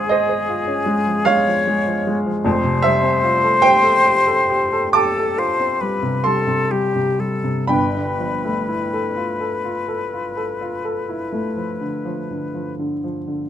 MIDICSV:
0, 0, Header, 1, 3, 480
1, 0, Start_track
1, 0, Tempo, 781250
1, 1500, Time_signature, 12, 3, 24, 8
1, 1984, Tempo, 827586
1, 2464, Tempo, 878477
1, 3424, Tempo, 904977
1, 3904, Tempo, 991736
1, 4864, Tempo, 958466
1, 7264, End_track
2, 0, Start_track
2, 0, Title_t, "Flute"
2, 0, Program_c, 0, 73
2, 0, Note_on_c, 0, 68, 73
2, 777, Note_on_c, 0, 73, 83
2, 786, Note_off_c, 0, 68, 0
2, 1341, Note_off_c, 0, 73, 0
2, 1509, Note_on_c, 0, 72, 94
2, 2938, Note_off_c, 0, 72, 0
2, 2947, Note_on_c, 0, 69, 74
2, 3191, Note_on_c, 0, 72, 77
2, 3199, Note_off_c, 0, 69, 0
2, 3421, Note_on_c, 0, 71, 70
2, 3429, Note_off_c, 0, 72, 0
2, 3652, Note_on_c, 0, 69, 67
2, 3660, Note_off_c, 0, 71, 0
2, 3900, Note_on_c, 0, 67, 67
2, 3908, Note_off_c, 0, 69, 0
2, 4137, Note_on_c, 0, 69, 61
2, 4144, Note_off_c, 0, 67, 0
2, 4373, Note_off_c, 0, 69, 0
2, 4376, Note_on_c, 0, 71, 68
2, 6889, Note_off_c, 0, 71, 0
2, 7264, End_track
3, 0, Start_track
3, 0, Title_t, "Grand piano"
3, 0, Program_c, 1, 0
3, 0, Control_c, 1, 64, 127
3, 0, Note_on_c, 1, 32, 57
3, 0, Note_on_c, 1, 44, 61
3, 0, Note_on_c, 1, 56, 38
3, 0, Note_on_c, 1, 61, 45
3, 0, Note_on_c, 1, 65, 48
3, 0, Note_on_c, 1, 68, 49
3, 0, Note_on_c, 1, 72, 53
3, 0, Note_on_c, 1, 73, 69
3, 0, Note_on_c, 1, 77, 95
3, 58, Note_on_c, 1, 75, 93
3, 62, Note_off_c, 1, 77, 0
3, 69, Note_off_c, 1, 68, 0
3, 69, Note_off_c, 1, 72, 0
3, 69, Note_on_c, 1, 68, 53
3, 69, Note_on_c, 1, 72, 73
3, 170, Note_off_c, 1, 72, 0
3, 179, Note_on_c, 1, 72, 51
3, 252, Note_off_c, 1, 68, 0
3, 298, Note_off_c, 1, 65, 0
3, 298, Note_on_c, 1, 65, 48
3, 366, Note_off_c, 1, 72, 0
3, 414, Note_off_c, 1, 61, 0
3, 414, Note_on_c, 1, 61, 52
3, 485, Note_off_c, 1, 65, 0
3, 529, Note_off_c, 1, 56, 0
3, 529, Note_on_c, 1, 56, 55
3, 604, Note_off_c, 1, 61, 0
3, 652, Note_on_c, 1, 53, 47
3, 724, Note_off_c, 1, 56, 0
3, 768, Note_on_c, 1, 77, 104
3, 773, Note_off_c, 1, 75, 0
3, 775, Note_on_c, 1, 56, 55
3, 776, Note_off_c, 1, 73, 0
3, 776, Note_on_c, 1, 73, 74
3, 849, Note_off_c, 1, 53, 0
3, 902, Note_on_c, 1, 53, 47
3, 973, Note_off_c, 1, 56, 0
3, 1028, Note_on_c, 1, 56, 53
3, 1096, Note_off_c, 1, 53, 0
3, 1143, Note_on_c, 1, 53, 48
3, 1218, Note_off_c, 1, 56, 0
3, 1272, Note_on_c, 1, 56, 55
3, 1334, Note_off_c, 1, 53, 0
3, 1388, Note_on_c, 1, 53, 53
3, 1457, Note_off_c, 1, 56, 0
3, 1475, Note_off_c, 1, 32, 0
3, 1476, Note_off_c, 1, 73, 0
3, 1477, Note_off_c, 1, 44, 0
3, 1497, Note_off_c, 1, 77, 0
3, 1502, Note_on_c, 1, 29, 76
3, 1503, Note_off_c, 1, 53, 0
3, 1507, Note_on_c, 1, 41, 78
3, 1509, Control_c, 1, 64, 0
3, 1592, Control_c, 1, 64, 127
3, 1620, Note_on_c, 1, 48, 49
3, 1735, Note_on_c, 1, 76, 102
3, 1743, Note_on_c, 1, 55, 53
3, 1743, Note_on_c, 1, 72, 69
3, 1814, Note_off_c, 1, 48, 0
3, 1859, Note_on_c, 1, 60, 56
3, 1937, Note_off_c, 1, 55, 0
3, 1987, Note_on_c, 1, 65, 61
3, 2053, Note_off_c, 1, 60, 0
3, 2105, Note_on_c, 1, 69, 51
3, 2173, Note_off_c, 1, 65, 0
3, 2198, Note_off_c, 1, 72, 0
3, 2211, Note_on_c, 1, 79, 117
3, 2217, Note_off_c, 1, 76, 0
3, 2217, Note_on_c, 1, 72, 77
3, 2218, Note_on_c, 1, 67, 67
3, 2293, Note_off_c, 1, 69, 0
3, 2333, Note_on_c, 1, 69, 52
3, 2414, Note_off_c, 1, 67, 0
3, 2464, Note_on_c, 1, 67, 64
3, 2534, Note_off_c, 1, 69, 0
3, 2580, Note_on_c, 1, 69, 56
3, 2660, Note_off_c, 1, 67, 0
3, 2705, Note_on_c, 1, 67, 63
3, 2782, Note_off_c, 1, 69, 0
3, 2830, Note_on_c, 1, 69, 57
3, 2905, Note_off_c, 1, 67, 0
3, 2933, Note_off_c, 1, 72, 0
3, 2942, Note_on_c, 1, 86, 103
3, 2950, Note_on_c, 1, 81, 84
3, 2951, Note_on_c, 1, 67, 57
3, 2952, Note_off_c, 1, 79, 0
3, 3025, Note_off_c, 1, 69, 0
3, 3074, Note_on_c, 1, 69, 57
3, 3142, Note_off_c, 1, 67, 0
3, 3184, Note_on_c, 1, 65, 51
3, 3260, Note_off_c, 1, 69, 0
3, 3305, Note_on_c, 1, 60, 52
3, 3374, Note_off_c, 1, 65, 0
3, 3423, Note_on_c, 1, 55, 48
3, 3493, Note_off_c, 1, 60, 0
3, 3536, Note_on_c, 1, 48, 49
3, 3611, Note_off_c, 1, 55, 0
3, 3635, Note_off_c, 1, 81, 0
3, 3649, Note_on_c, 1, 84, 82
3, 3652, Note_off_c, 1, 86, 0
3, 3656, Note_on_c, 1, 81, 59
3, 3658, Note_on_c, 1, 55, 52
3, 3730, Note_off_c, 1, 48, 0
3, 3773, Note_on_c, 1, 48, 44
3, 3854, Note_off_c, 1, 55, 0
3, 3899, Note_on_c, 1, 55, 47
3, 3970, Note_off_c, 1, 48, 0
3, 4019, Note_on_c, 1, 48, 43
3, 4087, Note_off_c, 1, 55, 0
3, 4131, Note_on_c, 1, 55, 49
3, 4208, Note_off_c, 1, 48, 0
3, 4252, Note_on_c, 1, 48, 44
3, 4326, Note_off_c, 1, 55, 0
3, 4357, Note_off_c, 1, 81, 0
3, 4360, Note_off_c, 1, 29, 0
3, 4362, Note_off_c, 1, 41, 0
3, 4367, Note_on_c, 1, 83, 85
3, 4368, Note_on_c, 1, 31, 56
3, 4370, Note_on_c, 1, 43, 60
3, 4374, Note_off_c, 1, 84, 0
3, 4374, Note_on_c, 1, 79, 65
3, 4376, Note_off_c, 1, 48, 0
3, 4390, Control_c, 1, 64, 0
3, 4499, Control_c, 1, 64, 127
3, 4499, Note_on_c, 1, 50, 38
3, 4616, Note_on_c, 1, 53, 42
3, 4695, Note_off_c, 1, 50, 0
3, 4740, Note_on_c, 1, 57, 40
3, 4813, Note_off_c, 1, 53, 0
3, 4855, Note_on_c, 1, 64, 46
3, 4935, Note_off_c, 1, 57, 0
3, 4980, Note_on_c, 1, 69, 44
3, 5054, Note_off_c, 1, 64, 0
3, 5094, Note_on_c, 1, 65, 45
3, 5175, Note_off_c, 1, 69, 0
3, 5215, Note_on_c, 1, 69, 44
3, 5291, Note_off_c, 1, 65, 0
3, 5335, Note_on_c, 1, 65, 49
3, 5411, Note_off_c, 1, 69, 0
3, 5455, Note_on_c, 1, 69, 47
3, 5532, Note_off_c, 1, 65, 0
3, 5579, Note_on_c, 1, 65, 40
3, 5653, Note_off_c, 1, 69, 0
3, 5699, Note_on_c, 1, 69, 46
3, 5775, Note_off_c, 1, 65, 0
3, 5820, Note_on_c, 1, 65, 46
3, 5895, Note_off_c, 1, 69, 0
3, 5938, Note_on_c, 1, 69, 45
3, 6015, Note_off_c, 1, 65, 0
3, 6060, Note_on_c, 1, 64, 42
3, 6133, Note_off_c, 1, 69, 0
3, 6177, Note_on_c, 1, 57, 40
3, 6253, Note_off_c, 1, 64, 0
3, 6295, Note_on_c, 1, 53, 43
3, 6372, Note_off_c, 1, 57, 0
3, 6419, Note_on_c, 1, 50, 38
3, 6491, Note_off_c, 1, 53, 0
3, 6541, Note_on_c, 1, 53, 45
3, 6614, Note_off_c, 1, 50, 0
3, 6670, Note_on_c, 1, 50, 37
3, 6737, Note_off_c, 1, 53, 0
3, 6787, Note_on_c, 1, 53, 39
3, 6864, Note_off_c, 1, 50, 0
3, 6912, Note_on_c, 1, 50, 36
3, 6985, Note_off_c, 1, 53, 0
3, 7012, Note_off_c, 1, 79, 0
3, 7028, Note_off_c, 1, 83, 0
3, 7035, Note_on_c, 1, 53, 41
3, 7108, Note_off_c, 1, 50, 0
3, 7154, Note_on_c, 1, 50, 37
3, 7222, Note_off_c, 1, 53, 0
3, 7240, Note_off_c, 1, 31, 0
3, 7241, Note_off_c, 1, 43, 0
3, 7264, Note_off_c, 1, 50, 0
3, 7264, End_track
0, 0, End_of_file